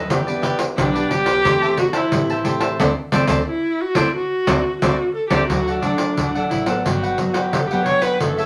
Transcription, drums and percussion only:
0, 0, Header, 1, 2, 480
1, 0, Start_track
1, 0, Tempo, 675676
1, 72, Time_signature, 4, 2, 24, 8
1, 6009, End_track
2, 0, Start_track
2, 0, Title_t, "Pandeiro"
2, 72, Note_on_c, 9, 54, 88
2, 143, Note_off_c, 9, 54, 0
2, 197, Note_on_c, 9, 54, 33
2, 268, Note_off_c, 9, 54, 0
2, 306, Note_on_c, 9, 54, 60
2, 377, Note_off_c, 9, 54, 0
2, 417, Note_on_c, 9, 54, 69
2, 488, Note_off_c, 9, 54, 0
2, 554, Note_on_c, 9, 54, 85
2, 625, Note_off_c, 9, 54, 0
2, 679, Note_on_c, 9, 54, 35
2, 750, Note_off_c, 9, 54, 0
2, 786, Note_on_c, 9, 54, 56
2, 858, Note_off_c, 9, 54, 0
2, 895, Note_on_c, 9, 54, 67
2, 966, Note_off_c, 9, 54, 0
2, 1031, Note_on_c, 9, 54, 77
2, 1102, Note_off_c, 9, 54, 0
2, 1158, Note_on_c, 9, 54, 36
2, 1229, Note_off_c, 9, 54, 0
2, 1261, Note_on_c, 9, 54, 61
2, 1332, Note_off_c, 9, 54, 0
2, 1372, Note_on_c, 9, 54, 67
2, 1444, Note_off_c, 9, 54, 0
2, 1505, Note_on_c, 9, 54, 78
2, 1576, Note_off_c, 9, 54, 0
2, 1631, Note_on_c, 9, 54, 35
2, 1702, Note_off_c, 9, 54, 0
2, 1739, Note_on_c, 9, 54, 60
2, 1810, Note_off_c, 9, 54, 0
2, 1851, Note_on_c, 9, 54, 71
2, 1922, Note_off_c, 9, 54, 0
2, 1987, Note_on_c, 9, 54, 103
2, 2058, Note_off_c, 9, 54, 0
2, 2217, Note_on_c, 9, 54, 99
2, 2288, Note_off_c, 9, 54, 0
2, 2326, Note_on_c, 9, 54, 98
2, 2397, Note_off_c, 9, 54, 0
2, 2806, Note_on_c, 9, 54, 92
2, 2877, Note_off_c, 9, 54, 0
2, 3177, Note_on_c, 9, 54, 103
2, 3248, Note_off_c, 9, 54, 0
2, 3425, Note_on_c, 9, 54, 101
2, 3496, Note_off_c, 9, 54, 0
2, 3769, Note_on_c, 9, 54, 99
2, 3840, Note_off_c, 9, 54, 0
2, 3905, Note_on_c, 9, 54, 77
2, 3976, Note_off_c, 9, 54, 0
2, 4033, Note_on_c, 9, 54, 33
2, 4104, Note_off_c, 9, 54, 0
2, 4139, Note_on_c, 9, 54, 54
2, 4210, Note_off_c, 9, 54, 0
2, 4249, Note_on_c, 9, 54, 65
2, 4320, Note_off_c, 9, 54, 0
2, 4387, Note_on_c, 9, 54, 75
2, 4458, Note_off_c, 9, 54, 0
2, 4514, Note_on_c, 9, 54, 33
2, 4585, Note_off_c, 9, 54, 0
2, 4625, Note_on_c, 9, 54, 53
2, 4696, Note_off_c, 9, 54, 0
2, 4734, Note_on_c, 9, 54, 64
2, 4805, Note_off_c, 9, 54, 0
2, 4871, Note_on_c, 9, 54, 79
2, 4942, Note_off_c, 9, 54, 0
2, 4998, Note_on_c, 9, 54, 32
2, 5069, Note_off_c, 9, 54, 0
2, 5101, Note_on_c, 9, 54, 57
2, 5172, Note_off_c, 9, 54, 0
2, 5216, Note_on_c, 9, 54, 64
2, 5287, Note_off_c, 9, 54, 0
2, 5350, Note_on_c, 9, 54, 77
2, 5421, Note_off_c, 9, 54, 0
2, 5476, Note_on_c, 9, 54, 32
2, 5547, Note_off_c, 9, 54, 0
2, 5582, Note_on_c, 9, 54, 54
2, 5653, Note_off_c, 9, 54, 0
2, 5695, Note_on_c, 9, 54, 61
2, 5766, Note_off_c, 9, 54, 0
2, 5828, Note_on_c, 9, 54, 80
2, 5899, Note_off_c, 9, 54, 0
2, 5956, Note_on_c, 9, 54, 33
2, 6009, Note_off_c, 9, 54, 0
2, 6009, End_track
0, 0, End_of_file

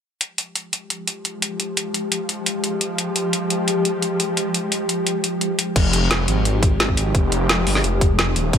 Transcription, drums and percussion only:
0, 0, Header, 1, 2, 480
1, 0, Start_track
1, 0, Key_signature, -4, "minor"
1, 0, Tempo, 346821
1, 291, Time_signature, 4, 2, 24, 8
1, 11875, End_track
2, 0, Start_track
2, 0, Title_t, "Drums"
2, 289, Note_on_c, 9, 42, 80
2, 427, Note_off_c, 9, 42, 0
2, 529, Note_on_c, 9, 42, 91
2, 668, Note_off_c, 9, 42, 0
2, 769, Note_on_c, 9, 42, 80
2, 907, Note_off_c, 9, 42, 0
2, 1010, Note_on_c, 9, 42, 94
2, 1148, Note_off_c, 9, 42, 0
2, 1250, Note_on_c, 9, 42, 78
2, 1388, Note_off_c, 9, 42, 0
2, 1488, Note_on_c, 9, 42, 91
2, 1626, Note_off_c, 9, 42, 0
2, 1730, Note_on_c, 9, 42, 77
2, 1868, Note_off_c, 9, 42, 0
2, 1969, Note_on_c, 9, 42, 96
2, 2108, Note_off_c, 9, 42, 0
2, 2210, Note_on_c, 9, 42, 83
2, 2348, Note_off_c, 9, 42, 0
2, 2451, Note_on_c, 9, 42, 97
2, 2589, Note_off_c, 9, 42, 0
2, 2691, Note_on_c, 9, 42, 80
2, 2829, Note_off_c, 9, 42, 0
2, 2930, Note_on_c, 9, 42, 90
2, 3069, Note_off_c, 9, 42, 0
2, 3170, Note_on_c, 9, 42, 76
2, 3308, Note_off_c, 9, 42, 0
2, 3410, Note_on_c, 9, 42, 90
2, 3548, Note_off_c, 9, 42, 0
2, 3649, Note_on_c, 9, 42, 79
2, 3788, Note_off_c, 9, 42, 0
2, 3889, Note_on_c, 9, 42, 96
2, 4028, Note_off_c, 9, 42, 0
2, 4130, Note_on_c, 9, 42, 79
2, 4269, Note_off_c, 9, 42, 0
2, 4370, Note_on_c, 9, 42, 94
2, 4508, Note_off_c, 9, 42, 0
2, 4610, Note_on_c, 9, 42, 82
2, 4749, Note_off_c, 9, 42, 0
2, 4850, Note_on_c, 9, 42, 91
2, 4988, Note_off_c, 9, 42, 0
2, 5089, Note_on_c, 9, 42, 77
2, 5228, Note_off_c, 9, 42, 0
2, 5330, Note_on_c, 9, 42, 90
2, 5469, Note_off_c, 9, 42, 0
2, 5570, Note_on_c, 9, 42, 77
2, 5709, Note_off_c, 9, 42, 0
2, 5810, Note_on_c, 9, 42, 93
2, 5948, Note_off_c, 9, 42, 0
2, 6050, Note_on_c, 9, 42, 78
2, 6188, Note_off_c, 9, 42, 0
2, 6290, Note_on_c, 9, 42, 88
2, 6428, Note_off_c, 9, 42, 0
2, 6530, Note_on_c, 9, 42, 78
2, 6668, Note_off_c, 9, 42, 0
2, 6770, Note_on_c, 9, 42, 88
2, 6909, Note_off_c, 9, 42, 0
2, 7011, Note_on_c, 9, 42, 75
2, 7149, Note_off_c, 9, 42, 0
2, 7250, Note_on_c, 9, 42, 87
2, 7388, Note_off_c, 9, 42, 0
2, 7491, Note_on_c, 9, 42, 74
2, 7630, Note_off_c, 9, 42, 0
2, 7732, Note_on_c, 9, 42, 93
2, 7870, Note_off_c, 9, 42, 0
2, 7970, Note_on_c, 9, 36, 122
2, 7971, Note_on_c, 9, 42, 86
2, 7971, Note_on_c, 9, 49, 110
2, 8109, Note_off_c, 9, 36, 0
2, 8110, Note_off_c, 9, 42, 0
2, 8110, Note_off_c, 9, 49, 0
2, 8212, Note_on_c, 9, 42, 101
2, 8351, Note_off_c, 9, 42, 0
2, 8452, Note_on_c, 9, 38, 119
2, 8452, Note_on_c, 9, 42, 86
2, 8590, Note_off_c, 9, 38, 0
2, 8590, Note_off_c, 9, 42, 0
2, 8692, Note_on_c, 9, 42, 97
2, 8830, Note_off_c, 9, 42, 0
2, 8932, Note_on_c, 9, 42, 83
2, 9071, Note_off_c, 9, 42, 0
2, 9170, Note_on_c, 9, 36, 111
2, 9172, Note_on_c, 9, 42, 96
2, 9309, Note_off_c, 9, 36, 0
2, 9311, Note_off_c, 9, 42, 0
2, 9412, Note_on_c, 9, 38, 120
2, 9412, Note_on_c, 9, 42, 84
2, 9530, Note_on_c, 9, 36, 62
2, 9550, Note_off_c, 9, 38, 0
2, 9550, Note_off_c, 9, 42, 0
2, 9651, Note_on_c, 9, 42, 98
2, 9669, Note_off_c, 9, 36, 0
2, 9790, Note_off_c, 9, 42, 0
2, 9890, Note_on_c, 9, 36, 125
2, 9891, Note_on_c, 9, 42, 85
2, 10029, Note_off_c, 9, 36, 0
2, 10030, Note_off_c, 9, 42, 0
2, 10132, Note_on_c, 9, 42, 99
2, 10270, Note_off_c, 9, 42, 0
2, 10372, Note_on_c, 9, 38, 127
2, 10372, Note_on_c, 9, 42, 85
2, 10511, Note_off_c, 9, 38, 0
2, 10511, Note_off_c, 9, 42, 0
2, 10612, Note_on_c, 9, 46, 79
2, 10732, Note_on_c, 9, 38, 37
2, 10750, Note_off_c, 9, 46, 0
2, 10852, Note_on_c, 9, 42, 81
2, 10870, Note_off_c, 9, 38, 0
2, 10990, Note_off_c, 9, 42, 0
2, 11090, Note_on_c, 9, 36, 116
2, 11092, Note_on_c, 9, 42, 93
2, 11229, Note_off_c, 9, 36, 0
2, 11230, Note_off_c, 9, 42, 0
2, 11331, Note_on_c, 9, 38, 123
2, 11331, Note_on_c, 9, 42, 81
2, 11469, Note_off_c, 9, 38, 0
2, 11469, Note_off_c, 9, 42, 0
2, 11571, Note_on_c, 9, 42, 98
2, 11709, Note_off_c, 9, 42, 0
2, 11810, Note_on_c, 9, 36, 127
2, 11810, Note_on_c, 9, 42, 84
2, 11875, Note_off_c, 9, 36, 0
2, 11875, Note_off_c, 9, 42, 0
2, 11875, End_track
0, 0, End_of_file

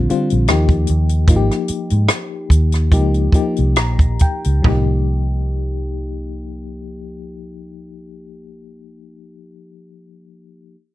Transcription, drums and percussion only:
0, 0, Header, 1, 2, 480
1, 0, Start_track
1, 0, Key_signature, -3, "minor"
1, 0, Tempo, 795756
1, 771, Time_signature, 4, 2, 24, 8
1, 1260, Tempo, 839161
1, 2220, Tempo, 891530
1, 6087, End_track
2, 0, Start_track
2, 0, Title_t, "Drums"
2, 60, Note_on_c, 9, 42, 52
2, 121, Note_off_c, 9, 42, 0
2, 182, Note_on_c, 9, 42, 35
2, 242, Note_off_c, 9, 42, 0
2, 288, Note_on_c, 9, 42, 70
2, 293, Note_on_c, 9, 37, 94
2, 348, Note_off_c, 9, 42, 0
2, 354, Note_off_c, 9, 37, 0
2, 415, Note_on_c, 9, 36, 78
2, 422, Note_on_c, 9, 42, 30
2, 475, Note_off_c, 9, 36, 0
2, 483, Note_off_c, 9, 42, 0
2, 524, Note_on_c, 9, 42, 57
2, 585, Note_off_c, 9, 42, 0
2, 659, Note_on_c, 9, 42, 40
2, 719, Note_off_c, 9, 42, 0
2, 770, Note_on_c, 9, 36, 95
2, 771, Note_on_c, 9, 42, 75
2, 831, Note_off_c, 9, 36, 0
2, 831, Note_off_c, 9, 42, 0
2, 913, Note_on_c, 9, 37, 29
2, 913, Note_on_c, 9, 42, 29
2, 973, Note_off_c, 9, 42, 0
2, 974, Note_off_c, 9, 37, 0
2, 1014, Note_on_c, 9, 42, 58
2, 1074, Note_off_c, 9, 42, 0
2, 1148, Note_on_c, 9, 42, 37
2, 1208, Note_off_c, 9, 42, 0
2, 1258, Note_on_c, 9, 37, 96
2, 1262, Note_on_c, 9, 42, 67
2, 1315, Note_off_c, 9, 37, 0
2, 1319, Note_off_c, 9, 42, 0
2, 1495, Note_on_c, 9, 36, 67
2, 1502, Note_on_c, 9, 42, 64
2, 1553, Note_off_c, 9, 36, 0
2, 1559, Note_off_c, 9, 42, 0
2, 1622, Note_on_c, 9, 42, 37
2, 1633, Note_on_c, 9, 37, 31
2, 1679, Note_off_c, 9, 42, 0
2, 1690, Note_off_c, 9, 37, 0
2, 1733, Note_on_c, 9, 36, 77
2, 1736, Note_on_c, 9, 42, 66
2, 1791, Note_off_c, 9, 36, 0
2, 1793, Note_off_c, 9, 42, 0
2, 1862, Note_on_c, 9, 42, 28
2, 1919, Note_off_c, 9, 42, 0
2, 1967, Note_on_c, 9, 36, 68
2, 1976, Note_on_c, 9, 42, 49
2, 2024, Note_off_c, 9, 36, 0
2, 2033, Note_off_c, 9, 42, 0
2, 2104, Note_on_c, 9, 42, 35
2, 2161, Note_off_c, 9, 42, 0
2, 2215, Note_on_c, 9, 42, 66
2, 2220, Note_on_c, 9, 37, 96
2, 2269, Note_off_c, 9, 42, 0
2, 2274, Note_off_c, 9, 37, 0
2, 2341, Note_on_c, 9, 36, 72
2, 2348, Note_on_c, 9, 42, 29
2, 2394, Note_off_c, 9, 36, 0
2, 2401, Note_off_c, 9, 42, 0
2, 2449, Note_on_c, 9, 42, 53
2, 2459, Note_on_c, 9, 36, 71
2, 2503, Note_off_c, 9, 42, 0
2, 2512, Note_off_c, 9, 36, 0
2, 2585, Note_on_c, 9, 42, 40
2, 2638, Note_off_c, 9, 42, 0
2, 2692, Note_on_c, 9, 36, 82
2, 2693, Note_on_c, 9, 43, 85
2, 2746, Note_off_c, 9, 36, 0
2, 2747, Note_off_c, 9, 43, 0
2, 6087, End_track
0, 0, End_of_file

